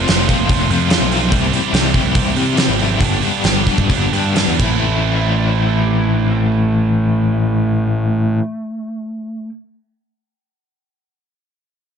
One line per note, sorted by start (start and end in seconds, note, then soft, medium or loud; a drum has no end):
0.08 0.27 F1 medium
0.08 0.26 F2 medium
0.08 0.27 C3 medium
0.08 0.27 F3 medium
0.08 0.28 A3 medium
0.08 0.29 C4 medium
0.08 0.28 F4 medium
0.08 snare medium
0.08 open hi-hat medium
0.27 0.47 F2 medium
0.27 0.47 C3 medium
0.27 0.48 F3 medium
0.27 0.49 A3 medium
0.27 0.49 C4 medium
0.27 0.49 F4 medium
0.27 kick medium
0.27 open hi-hat soft
0.39 0.67 F1 medium
0.48 0.67 F2 medium
0.48 0.68 C3 medium
0.48 0.68 F3 medium
0.48 0.69 A3 medium
0.48 0.69 C4 medium
0.48 0.70 F4 medium
0.48 kick loud
0.48 open hi-hat medium
0.68 0.88 F2 medium
0.68 0.98 F2 medium
0.68 0.89 C3 medium
0.68 0.90 F3 medium
0.68 0.90 A3 medium
0.68 0.90 C4 medium
0.68 0.91 F4 medium
0.68 open hi-hat soft
0.90 1.09 F2 medium
0.90 1.10 C3 medium
0.90 1.10 F3 medium
0.90 1.11 A3 medium
0.90 1.11 C4 medium
0.90 1.12 F4 medium
0.90 snare loud
0.90 open hi-hat medium
1.01 1.29 B1 medium
1.11 1.30 F2 medium
1.11 1.29 C3 medium
1.11 1.31 F3 medium
1.11 1.31 A3 medium
1.11 1.31 C4 medium
1.11 1.31 F4 medium
1.11 open hi-hat soft
1.31 1.51 C2 medium
1.31 1.51 C3 medium
1.31 1.52 E3 medium
1.31 1.53 G3 medium
1.31 1.53 C4 medium
1.31 1.53 E4 medium
1.31 1.53 G4 medium
1.31 kick medium
1.31 open hi-hat medium
1.52 1.71 C3 medium
1.52 1.72 E3 medium
1.52 1.74 G3 medium
1.52 1.73 C4 medium
1.52 1.74 E4 medium
1.52 1.74 G4 medium
1.52 open hi-hat soft
1.72 1.92 C2 medium
1.72 1.92 C3 medium
1.72 1.93 E3 medium
1.72 1.94 G3 medium
1.72 1.94 C4 medium
1.72 1.94 E4 medium
1.72 1.95 G4 medium
1.72 snare medium
1.72 open hi-hat medium
1.93 2.13 C3 medium
1.93 2.14 E3 medium
1.93 2.14 G3 medium
1.93 2.15 C4 medium
1.93 2.15 E4 medium
1.93 2.14 G4 medium
1.93 kick medium
1.93 open hi-hat soft
2.04 2.33 C2 medium
2.15 2.34 C3 medium
2.15 2.34 E3 medium
2.15 2.35 G3 medium
2.15 2.36 C4 medium
2.15 2.36 E4 medium
2.15 2.35 G4 medium
2.15 kick loud
2.15 open hi-hat medium
2.35 2.54 C3 medium
2.35 2.65 C3 medium
2.35 2.55 E3 medium
2.35 2.55 G3 medium
2.35 2.56 C4 medium
2.35 2.57 E4 medium
2.35 2.56 G4 medium
2.35 open hi-hat soft
2.55 2.76 C3 medium
2.55 2.77 E3 medium
2.55 2.77 G3 medium
2.55 2.78 C4 medium
2.55 2.78 E4 medium
2.55 2.79 G4 medium
2.55 snare loud
2.55 open hi-hat medium
2.68 2.97 G#1 medium
2.77 2.98 C3 medium
2.77 2.98 E3 medium
2.77 2.99 G3 medium
2.77 2.99 C4 medium
2.77 2.99 E4 medium
2.77 3.00 G4 medium
2.77 open hi-hat soft
2.99 3.20 G1 medium
2.99 3.20 G2 medium
2.99 3.20 D3 medium
2.99 3.21 G3 medium
2.99 3.21 B3 medium
2.99 3.22 D4 medium
2.99 3.22 G4 medium
2.99 kick medium
2.99 open hi-hat medium
3.21 3.42 G2 medium
3.21 3.43 D3 medium
3.21 3.44 G3 medium
3.21 3.44 B3 medium
3.21 3.44 D4 medium
3.21 3.45 G4 medium
3.21 open hi-hat soft
3.43 3.65 G1 medium
3.43 3.65 G2 medium
3.43 3.66 D3 medium
3.43 3.66 G3 medium
3.43 3.67 B3 medium
3.43 3.67 D4 medium
3.43 3.68 G4 medium
3.43 snare medium
3.43 open hi-hat medium
3.66 3.87 G2 medium
3.66 3.88 D3 medium
3.66 3.88 G3 medium
3.66 3.89 B3 medium
3.66 3.89 D4 medium
3.66 3.89 G4 medium
3.66 kick medium
3.66 open hi-hat soft
3.78 4.09 G1 medium
3.78 kick medium
3.88 4.10 G2 medium
3.88 4.11 D3 medium
3.88 4.12 G3 medium
3.88 4.12 B3 medium
3.88 4.13 D4 medium
3.88 4.13 G4 medium
3.88 kick medium
3.88 open hi-hat medium
4.11 4.33 G2 medium
4.11 4.44 G2 medium
4.11 4.34 D3 medium
4.11 4.35 G3 medium
4.11 4.35 B3 medium
4.11 4.36 D4 medium
4.11 4.36 G4 medium
4.11 open hi-hat soft
4.34 4.59 G2 medium
4.34 4.57 D3 medium
4.34 4.59 G3 medium
4.34 4.60 B3 medium
4.34 4.60 D4 medium
4.34 4.60 G4 medium
4.34 snare medium
4.34 open hi-hat medium
4.48 4.59 E2 medium
4.58 8.38 A1 medium
4.58 8.40 A2 medium
4.58 8.41 E3 medium
4.58 8.43 A3 medium
4.58 8.44 C4 medium
4.58 kick medium
4.58 crash medium
4.62 8.44 E4 medium
5.15 5.31 E5 medium
5.31 5.48 D5 medium
5.48 5.64 C5 medium
5.66 5.80 A4 medium
5.81 5.97 G4 medium
5.99 6.14 E4 medium
6.14 6.29 D4 medium
6.30 6.45 C4 medium
6.46 9.49 A3 medium